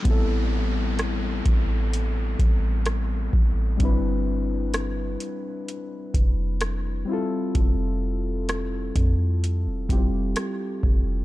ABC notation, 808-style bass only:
X:1
M:4/4
L:1/16
Q:1/4=64
K:Am
V:1 name="808-style bass" clef=bass
A,,,6 A,,,4 A,,,4 A,,,2 | G,,,6 z4 F,,,4 z2 | F,,,6 F,,3 E,,, F,,,2 z2 F,,,2 |]